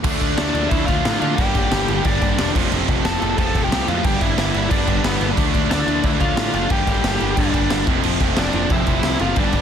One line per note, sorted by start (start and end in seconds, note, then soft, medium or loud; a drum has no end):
0.04 0.16 D2 loud
0.04 0.22 D3 medium
0.04 0.21 F3 medium
0.04 0.21 A3 loud
0.04 0.22 D4 loud
0.04 kick loud
0.04 crash loud
0.04 crash medium
0.21 0.33 D2 medium
0.21 0.36 D3 medium
0.21 0.37 F3 medium
0.21 0.38 A3 medium
0.21 0.39 D4 medium
0.21 kick medium
0.21 crash medium
0.37 0.49 D2 medium
0.37 0.55 D3 medium
0.37 0.54 F3 loud
0.37 0.54 A3 medium
0.37 0.69 D4 medium
0.37 0.53 D4 medium
0.37 0.69 D5 medium
0.37 snare loud
0.37 crash medium
0.54 0.66 D2 loud
0.54 0.70 D3 medium
0.54 0.70 F3 medium
0.54 0.70 A3 medium
0.54 0.71 D4 loud
0.54 crash medium
0.69 0.83 D2 loud
0.69 0.88 D3 loud
0.69 0.88 F3 loud
0.69 0.87 A3 loud
0.69 0.86 D4 loud
0.69 0.86 E4 medium
0.69 0.85 E5 medium
0.69 kick loud
0.69 crash medium
0.86 1.00 D2 medium
0.86 1.03 D3 medium
0.86 1.04 F3 medium
0.86 1.04 A3 medium
0.86 1.05 D4 medium
0.86 1.19 F4 medium
0.86 1.18 F5 loud
0.86 kick medium
0.86 crash medium
1.04 1.16 A2 medium
1.04 1.22 D3 medium
1.04 1.21 F3 loud
1.04 1.21 A3 loud
1.04 1.20 D4 medium
1.04 snare loud
1.04 crash medium
1.20 1.33 D3 medium
1.20 1.38 D3 medium
1.20 1.38 F3 medium
1.20 1.37 A3 medium
1.20 1.37 D4 loud
1.20 1.38 F4 medium
1.20 1.35 F5 loud
1.20 crash medium
1.36 1.50 G1 loud
1.36 1.56 G2 medium
1.36 1.55 D3 medium
1.36 1.55 G3 medium
1.36 2.01 G4 loud
1.36 2.05 G5 loud
1.36 kick loud
1.36 crash medium
1.40 1.54 A#3 loud
1.40 1.53 D4 medium
1.55 1.66 G1 medium
1.55 1.70 G2 medium
1.55 1.71 D3 medium
1.55 1.72 G3 loud
1.55 1.72 A#3 medium
1.55 1.72 D4 loud
1.55 kick medium
1.55 crash medium
1.71 1.83 G1 loud
1.71 1.89 G2 loud
1.71 1.89 D3 loud
1.71 1.88 G3 medium
1.71 1.88 A#3 loud
1.71 1.87 D4 loud
1.71 snare loud
1.71 crash medium
1.88 2.00 G1 medium
1.88 2.04 G2 medium
1.88 2.05 D3 medium
1.88 2.05 G3 medium
1.88 2.06 A#3 medium
1.88 2.06 D4 medium
1.88 crash medium
2.05 2.17 G1 loud
2.05 2.22 G2 loud
2.05 2.22 D3 loud
2.05 2.22 G3 loud
2.05 2.22 A#3 loud
2.05 2.52 D4 medium
2.05 2.21 D4 loud
2.05 2.51 D5 medium
2.05 kick loud
2.05 crash medium
2.22 2.33 G1 medium
2.22 2.37 G2 medium
2.22 2.38 D3 medium
2.22 2.38 G3 medium
2.22 2.39 A#3 medium
2.22 2.39 D4 loud
2.22 kick medium
2.22 crash medium
2.38 2.50 E1 medium
2.38 2.54 G2 medium
2.38 2.54 D3 medium
2.38 2.54 G3 medium
2.38 2.54 A#3 loud
2.38 2.55 D4 loud
2.38 snare loud
2.38 crash medium
2.54 2.67 F1 medium
2.54 2.73 F2 loud
2.54 2.72 C3 loud
2.54 2.72 F3 loud
2.54 2.71 A3 loud
2.54 2.71 C4 loud
2.54 kick loud
2.54 crash loud
2.71 2.83 F1 loud
2.71 2.87 F2 medium
2.71 2.88 C3 medium
2.71 2.88 F3 medium
2.71 2.89 A3 medium
2.71 2.89 C4 loud
2.71 crash medium
2.88 3.00 F1 loud
2.88 3.06 F2 medium
2.88 3.05 C3 medium
2.88 3.05 F3 medium
2.88 3.05 A3 medium
2.88 3.04 C4 medium
2.88 kick loud
2.88 crash medium
3.05 3.16 F1 medium
3.05 3.20 F2 medium
3.05 3.20 C3 loud
3.05 3.21 F3 loud
3.05 3.21 A3 loud
3.05 3.22 C4 loud
3.05 3.36 A4 medium
3.05 3.36 A5 loud
3.05 snare loud
3.05 crash medium
3.21 3.33 F1 loud
3.21 3.38 F2 medium
3.21 3.38 C3 medium
3.21 3.37 F3 medium
3.21 3.37 A3 medium
3.21 3.37 C4 loud
3.21 crash medium
3.38 3.49 F1 loud
3.38 3.55 F2 medium
3.38 3.55 C3 loud
3.38 3.56 F3 loud
3.38 3.56 A3 loud
3.38 3.56 C4 loud
3.38 3.62 A4 medium
3.38 3.64 A5 loud
3.38 kick loud
3.38 crash medium
3.55 3.66 F1 loud
3.55 3.72 F2 medium
3.55 3.72 C3 medium
3.55 3.72 F3 medium
3.55 3.71 A3 medium
3.55 3.71 C4 medium
3.55 kick medium
3.55 crash medium
3.64 3.88 G4 medium
3.64 3.89 G5 medium
3.69 3.83 C2 medium
3.69 3.86 F2 medium
3.69 3.87 C3 medium
3.69 3.88 A3 loud
3.69 3.89 C4 loud
3.69 snare loud
3.69 crash medium
3.74 3.87 F2 medium
3.74 3.88 F3 medium
3.88 3.99 F2 medium
3.88 4.04 F2 medium
3.88 4.04 C3 loud
3.88 4.04 F3 loud
3.88 4.04 A3 loud
3.88 4.04 C4 medium
3.88 4.05 F4 medium
3.88 4.05 F5 loud
3.88 crash medium
4.04 4.16 G1 medium
4.04 4.22 G2 medium
4.04 4.21 D3 medium
4.04 4.21 G3 loud
4.04 4.21 B3 medium
4.04 4.21 D4 loud
4.04 4.21 G4 medium
4.04 4.21 G5 loud
4.04 kick loud
4.04 crash medium
4.21 4.33 G1 medium
4.21 4.36 G2 medium
4.21 4.36 D3 medium
4.21 4.37 G3 medium
4.21 4.38 B3 medium
4.21 4.39 D4 loud
4.21 4.68 E4 medium
4.21 4.70 E5 loud
4.21 kick medium
4.21 crash medium
4.37 4.50 G1 medium
4.37 4.56 G2 medium
4.37 4.54 D3 loud
4.37 4.55 G3 loud
4.37 4.53 B3 loud
4.37 4.54 D4 medium
4.37 snare loud
4.37 crash medium
4.54 4.66 G1 medium
4.54 4.70 G2 medium
4.54 4.72 D3 medium
4.54 4.72 G3 medium
4.54 4.73 B3 medium
4.54 4.73 D4 loud
4.54 crash medium
4.71 4.82 G1 medium
4.71 4.89 G2 loud
4.71 4.89 D3 loud
4.71 4.88 G3 medium
4.71 4.88 B3 loud
4.71 5.02 D4 medium
4.71 4.87 D4 loud
4.71 5.05 D5 medium
4.71 kick loud
4.71 crash medium
4.87 4.99 G1 medium
4.87 5.04 G2 medium
4.87 5.04 D3 medium
4.87 5.05 G3 medium
4.87 5.05 B3 loud
4.87 5.06 D4 medium
4.87 kick medium
4.87 crash medium
5.04 5.16 G1 medium
5.04 5.22 G2 medium
5.04 5.22 D3 medium
5.04 5.21 G3 medium
5.04 5.28 B3 medium
5.04 5.21 B3 medium
5.04 5.21 D4 medium
5.04 5.28 B4 medium
5.04 snare loud
5.04 crash loud
5.21 5.32 G1 medium
5.21 5.38 G2 medium
5.21 5.36 D3 medium
5.21 5.37 G3 medium
5.21 5.37 B3 loud
5.21 5.38 D4 loud
5.21 crash medium
5.37 5.49 D2 loud
5.37 5.55 D3 medium
5.37 5.54 F3 loud
5.37 5.54 A3 loud
5.37 5.54 D4 medium
5.37 kick loud
5.37 crash medium
5.54 5.66 D2 medium
5.54 5.71 D3 medium
5.54 5.72 F3 medium
5.54 5.72 A3 medium
5.54 5.73 D4 loud
5.54 kick medium
5.54 crash medium
5.70 5.82 D2 loud
5.70 5.89 D3 medium
5.70 5.88 F3 medium
5.70 5.88 A3 loud
5.70 6.02 D4 medium
5.70 5.87 D4 loud
5.70 6.05 D5 medium
5.70 snare loud
5.70 crash medium
5.87 5.99 D2 medium
5.87 6.03 D3 medium
5.87 6.04 F3 medium
5.87 6.05 A3 medium
5.87 6.05 D4 loud
5.87 crash medium
6.03 6.15 D2 medium
6.03 6.22 D3 loud
6.03 6.21 F3 loud
6.03 6.21 A3 loud
6.03 6.20 D4 loud
6.03 6.10 E4 medium
6.03 6.10 E5 medium
6.03 kick loud
6.03 crash medium
6.20 6.32 D2 medium
6.20 6.36 D3 medium
6.20 6.36 F3 medium
6.20 6.38 A3 medium
6.20 6.38 D4 medium
6.20 6.52 F4 medium
6.20 6.54 F5 medium
6.20 kick medium
6.20 crash medium
6.37 6.48 A2 medium
6.37 6.54 D3 medium
6.37 6.54 F3 medium
6.37 6.54 A3 loud
6.37 6.53 D4 medium
6.37 snare loud
6.37 crash medium
6.53 6.65 F#1 medium
6.53 6.70 D3 medium
6.53 6.70 F3 medium
6.53 6.70 A3 medium
6.53 6.70 D4 loud
6.53 6.70 F4 medium
6.53 6.71 F5 medium
6.53 crash medium
6.70 6.82 G1 loud
6.70 6.88 G2 loud
6.70 6.88 D3 medium
6.70 6.87 G3 loud
6.70 6.87 A#3 medium
6.70 6.86 D4 loud
6.70 7.34 G4 loud
6.70 7.40 G5 loud
6.70 kick loud
6.70 crash medium
6.87 6.98 G1 loud
6.87 7.04 G2 medium
6.87 7.04 D3 medium
6.87 7.05 G3 medium
6.87 7.05 A#3 medium
6.87 7.06 D4 medium
6.87 kick medium
6.87 crash medium
7.04 7.15 G1 loud
7.04 7.21 G2 loud
7.04 7.21 D3 loud
7.04 7.21 G3 loud
7.04 7.20 A#3 loud
7.04 7.19 D4 loud
7.04 snare loud
7.04 crash medium
7.20 7.32 G1 medium
7.20 7.36 G2 medium
7.20 7.37 D3 medium
7.20 7.38 G3 medium
7.20 7.38 A#3 medium
7.20 7.38 D4 loud
7.20 crash medium
7.37 7.49 G1 loud
7.37 7.55 G2 loud
7.37 7.55 D3 loud
7.37 7.54 G3 loud
7.37 7.54 A#3 loud
7.37 7.84 D4 medium
7.37 7.53 D4 loud
7.37 7.84 D5 medium
7.37 kick loud
7.37 crash medium
7.54 7.65 G1 loud
7.54 7.70 G2 medium
7.54 7.70 D3 medium
7.54 7.71 G3 medium
7.54 7.71 A#3 medium
7.54 7.71 D4 medium
7.54 kick medium
7.54 crash medium
7.70 7.83 G1 loud
7.70 7.86 G2 medium
7.70 7.87 D3 medium
7.70 7.87 G3 medium
7.70 7.87 A#3 loud
7.70 7.87 D4 loud
7.70 snare loud
7.70 crash loud
7.87 7.99 F1 medium
7.87 8.05 F2 loud
7.87 8.05 C3 loud
7.87 8.04 F3 loud
7.87 8.04 A3 loud
7.87 8.03 C4 loud
7.87 kick loud
7.87 crash medium
8.03 8.16 F1 medium
8.03 8.19 F2 medium
8.03 8.20 C3 medium
8.03 8.21 F3 medium
8.03 8.21 A3 medium
8.03 8.22 C4 loud
8.03 crash medium
8.20 8.32 F1 medium
8.20 8.37 F2 medium
8.20 8.38 C3 medium
8.20 8.37 F3 medium
8.20 8.37 A3 medium
8.20 8.36 C4 medium
8.20 kick loud
8.20 crash medium
8.36 8.48 F1 loud
8.36 8.53 F2 medium
8.36 8.53 C3 loud
8.36 8.54 F3 loud
8.36 8.55 A3 loud
8.36 8.55 C4 loud
8.36 8.69 D4 medium
8.36 8.69 D5 medium
8.36 snare loud
8.36 crash medium
8.53 8.65 F1 medium
8.53 8.71 F2 medium
8.53 8.70 C3 medium
8.53 8.69 F3 medium
8.53 8.70 A3 medium
8.53 8.69 C4 medium
8.53 crash medium
8.70 8.82 F1 loud
8.70 8.85 F2 loud
8.70 8.86 C3 loud
8.70 8.86 F3 loud
8.70 8.87 A3 loud
8.70 8.87 C4 loud
8.70 9.17 E4 medium
8.70 9.21 E5 loud
8.70 kick loud
8.70 crash medium
8.87 8.98 F1 medium
8.87 9.04 F2 medium
8.87 9.03 C3 medium
8.87 9.03 F3 medium
8.87 9.03 A3 medium
8.87 9.02 C4 loud
8.87 kick medium
8.87 crash medium
9.03 9.15 C2 medium
9.03 9.19 F2 medium
9.03 9.19 C3 loud
9.03 9.20 F3 medium
9.03 9.20 A3 medium
9.03 9.21 C4 loud
9.03 snare loud
9.03 crash medium
9.19 9.32 F#1 medium
9.19 9.36 F2 medium
9.19 9.36 C3 loud
9.19 9.36 F3 loud
9.19 9.36 A3 loud
9.19 9.37 C4 loud
9.19 9.36 F4 medium
9.19 9.38 F5 loud
9.19 crash medium
9.36 9.48 G1 medium
9.36 9.55 G2 loud
9.36 9.55 D3 medium
9.36 9.54 G3 loud
9.36 9.54 B3 loud
9.36 9.61 D4 medium
9.36 9.53 D4 medium
9.36 9.61 D5 loud
9.36 kick loud
9.36 crash medium
9.53 9.61 G1 medium
9.53 9.61 D3 medium
9.53 9.61 G3 medium
9.53 9.61 B3 medium
9.53 9.61 D4 medium
9.53 kick medium
9.53 crash medium
9.57 9.61 G2 medium